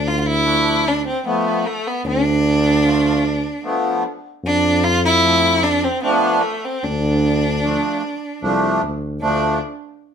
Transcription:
0.00 1.08 D2 loud
0.08 0.19 F4 loud
0.20 0.28 F4 medium
0.27 0.89 E4 loud
0.44 0.85 F3 medium
0.44 0.84 A3 medium
0.44 0.85 D4 medium
0.88 1.06 D4 loud
1.07 1.25 C4 medium
1.24 1.64 F3 medium
1.24 1.65 A3 medium
1.24 1.65 B3 medium
1.24 1.68 B3 medium
1.67 1.89 A3 medium
1.87 2.06 B3 medium
2.05 3.48 D2 loud
2.05 4.01 D4 loud
2.84 3.24 F3 medium
2.84 3.24 A3 medium
2.84 3.24 F4 medium
3.63 4.03 F3 loud
3.63 4.04 A3 medium
3.63 4.04 B3 loud
4.44 5.87 F2 loud
4.44 4.86 D4 loud
4.84 5.04 F4 loud
5.05 5.65 E4 loud
5.22 5.63 F3 medium
5.22 5.63 A3 medium
5.22 5.63 C4 medium
5.63 5.85 D4 loud
5.84 6.03 C4 loud
6.02 6.42 F3 medium
6.02 6.42 A3 medium
6.02 6.44 B3 loud
6.02 6.43 D4 loud
6.43 6.67 A3 medium
6.65 6.85 C4 medium
6.83 7.79 D2 loud
6.83 8.82 D4 medium
7.62 8.02 F3 medium
7.62 8.03 A3 medium
7.62 8.02 D4 medium
8.41 8.78 C2 loud
8.41 8.82 F3 medium
8.41 8.81 A3 medium
8.41 8.82 D4 loud
8.82 9.18 D2 medium
9.21 9.59 D2 medium
9.21 9.58 F3 medium
9.21 9.59 A3 medium
9.21 9.58 D4 medium
9.21 9.59 D4 medium

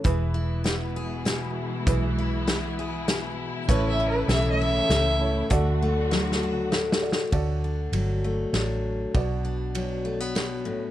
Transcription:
0.03 1.68 E1 medium
0.03 3.64 B2 medium
0.03 3.64 E3 medium
0.03 1.87 E3 medium
0.03 3.64 G#3 medium
0.03 5.46 E4 medium
0.03 1.83 E4 medium
0.03 1.83 G#4 medium
0.03 1.83 B4 medium
0.03 kick loud
0.03 closed hi-hat medium
0.34 2.18 E4 medium
0.64 1.82 B3 medium
0.64 snare medium
0.64 closed hi-hat medium
0.96 1.83 G#4 medium
1.25 1.86 B2 medium
1.25 snare medium
1.25 closed hi-hat medium
1.86 3.50 B1 medium
1.86 3.68 E3 medium
1.86 3.64 E4 medium
1.86 3.65 G#4 medium
1.86 3.65 B4 medium
1.86 kick loud
1.86 closed hi-hat medium
2.18 3.65 E4 medium
2.47 3.65 B3 medium
2.47 snare medium
2.47 closed hi-hat medium
2.79 3.65 G#4 medium
3.08 3.68 B2 medium
3.08 snare medium
3.08 closed hi-hat medium
3.68 4.23 A1 medium
3.68 4.90 A2 medium
3.68 5.49 C#3 medium
3.68 5.49 E3 medium
3.68 4.29 E3 medium
3.68 7.29 A3 medium
3.68 3.99 C#4 medium
3.68 5.16 E4 medium
3.68 5.48 E4 medium
3.68 5.17 A4 medium
3.68 4.61 A4 medium
3.68 3.88 B4 medium
3.68 5.17 C#5 medium
3.68 kick loud
3.68 closed hi-hat medium
3.89 4.07 E5 medium
4.00 5.47 C#4 medium
4.08 4.28 B4 loud
4.28 4.80 B1 medium
4.28 5.51 E3 medium
4.28 4.49 E5 medium
4.28 snare medium
4.28 closed hi-hat medium
4.50 5.67 E5 loud
4.61 6.43 A4 medium
4.89 5.41 C#2 medium
4.89 5.47 A2 medium
4.89 snare medium
4.89 closed hi-hat medium
5.21 5.51 E4 medium
5.21 5.49 A4 medium
5.21 5.51 C#5 medium
5.50 7.14 D2 medium
5.50 7.29 D3 medium
5.50 7.31 D3 medium
5.50 7.31 F#3 medium
5.50 6.99 F#4 medium
5.50 7.31 F#4 medium
5.50 6.99 A4 medium
5.50 7.00 D5 medium
5.50 kick loud
5.50 closed hi-hat medium
5.82 8.23 A3 medium
6.11 7.29 F#3 medium
6.11 snare medium
6.32 snare medium
6.43 9.15 F#4 medium
6.72 7.29 A2 medium
6.72 snare medium
6.92 snare loud
7.01 7.31 F#4 medium
7.01 7.31 A4 soft
7.01 7.32 D5 medium
7.12 snare medium
7.32 7.87 D2 medium
7.32 9.11 D3 medium
7.32 9.11 F#4 medium
7.32 9.11 A4 medium
7.32 9.11 D5 medium
7.32 kick loud
7.32 ride medium
7.64 8.54 D4 medium
7.92 8.44 G1 medium
7.92 8.53 F#3 medium
7.92 ride medium
8.24 9.15 A3 medium
8.53 9.05 A1 medium
8.53 9.11 F#3 medium
8.53 9.44 D4 medium
8.53 snare medium
8.53 ride medium
9.14 10.78 B1 medium
9.14 10.34 B2 medium
9.14 10.91 F#4 medium
9.14 10.91 B4 medium
9.14 10.91 D5 medium
9.14 kick loud
9.14 ride medium
9.45 10.91 D4 medium
9.75 10.91 F#3 medium
9.75 ride medium
10.05 10.20 A3 medium
10.20 10.91 B3 soft
10.35 10.66 B2 medium
10.35 snare medium
10.35 ride medium
10.65 10.91 A2 medium

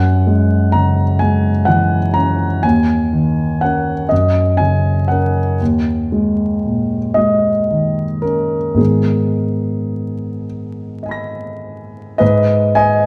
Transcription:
0.00 2.61 F#2 soft
0.00 0.73 F#5 medium
0.27 1.02 G#3 soft
0.72 1.49 C#3 soft
0.72 1.20 A#5 medium
1.19 1.97 G#3 soft
1.19 1.67 G#5 medium
1.65 2.44 E3 soft
1.65 2.14 F#5 medium
2.14 2.64 C#4 soft
2.14 2.63 A#5 medium
2.63 4.07 D#2 soft
2.63 3.61 G#5 medium
3.13 3.91 D#3 soft
3.61 4.07 C#4 soft
3.61 4.08 A#4 soft
3.61 4.10 F#5 medium
4.09 5.56 F#2 soft
4.09 4.59 D#5 medium
4.57 5.39 C#3 soft
4.57 5.08 G#5 medium
5.08 5.56 C#4 soft
5.08 5.57 A#4 soft
5.08 5.59 F#5 medium
5.61 8.76 D#2 soft
6.12 6.96 G#3 soft
6.65 7.50 A#2 soft
7.14 8.02 G#3 soft
7.14 8.23 D#5 medium
7.71 8.57 D#3 soft
8.22 8.79 C#4 soft
8.22 8.77 A#4 medium
8.75 12.14 G#2 soft
8.75 12.15 D#3 soft
8.75 12.15 G#3 soft
8.75 12.16 B3 soft
8.75 10.46 G#4 medium
8.75 12.16 A#4 soft
11.03 12.17 D#5 soft
11.03 12.18 G#5 soft
11.09 12.20 B5 soft
11.09 12.21 A#6 soft
12.18 13.06 G#2 soft
12.18 12.73 B4 soft
12.18 12.75 D#5 medium
12.75 13.06 D#5 medium
12.75 13.06 G#5 medium

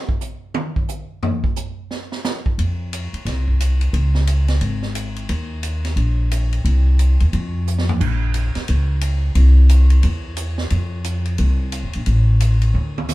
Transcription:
0.09 kick medium
0.21 hi-hat pedal medium
0.54 high tom medium
0.76 kick medium
0.88 hi-hat pedal medium
1.23 floor tom medium
1.44 kick medium
1.56 hi-hat pedal medium
1.91 snare soft
2.12 snare soft
2.24 snare medium
2.24 hi-hat pedal medium
2.46 kick medium
2.58 3.10 F2 medium
2.58 ride medium
2.93 hi-hat pedal soft
2.93 ride medium
3.13 muted upright bass stroke soft
3.13 ride soft
3.25 3.90 C2 medium
3.25 snare soft
3.25 ride medium
3.48 kick soft
3.60 hi-hat pedal medium
3.60 ride medium
3.81 ride soft
3.93 4.58 C#2 medium
3.93 ride medium
4.15 snare soft
4.27 hi-hat pedal medium
4.27 ride medium
4.48 snare soft
4.48 ride soft
4.61 5.26 G#1 medium
4.61 ride medium
4.82 snare soft
4.95 hi-hat pedal medium
4.95 ride medium
5.16 ride soft
5.29 5.94 D#2 medium
5.29 ride medium
5.63 hi-hat pedal medium
5.63 ride medium
5.85 snare soft
5.85 ride soft
5.96 6.61 A#1 medium
5.96 ride soft
6.31 hi-hat pedal medium
6.31 ride medium
6.53 ride soft
6.65 7.16 C2 medium
6.65 ride medium
6.99 hi-hat pedal medium
6.99 ride medium
7.20 7.32 D#2 medium
7.20 ride soft
7.33 7.97 F2 medium
7.33 ride soft
7.67 hi-hat pedal medium
7.78 snare medium
7.89 floor tom medium
8.00 8.51 A#1 medium
8.00 kick medium
8.00 crash medium
8.34 hi-hat pedal soft
8.34 ride medium
8.55 muted upright bass stroke soft
8.55 snare soft
8.55 ride soft
8.68 9.33 C#2 medium
8.68 ride medium
9.01 hi-hat pedal soft
9.01 ride medium
9.35 10.00 C2 medium
9.35 ride medium
9.69 hi-hat pedal medium
9.69 ride medium
9.90 ride soft
10.03 10.68 E2 medium
10.03 ride medium
10.37 hi-hat pedal medium
10.37 ride medium
10.58 snare medium
10.70 11.35 F2 medium
10.70 ride medium
11.04 hi-hat pedal medium
11.04 ride medium
11.25 ride soft
11.38 11.81 C2 medium
11.38 ride medium
11.72 hi-hat pedal soft
11.72 ride medium
11.84 11.94 D#2 medium
11.93 12.06 A#1 medium
11.93 ride soft
12.06 12.71 A1 medium
12.06 ride medium
12.40 hi-hat pedal medium
12.40 ride medium
12.62 ride soft
12.74 13.14 D2 medium
12.74 high tom soft
12.98 high tom medium
13.09 hi-hat pedal medium
13.09 high tom medium

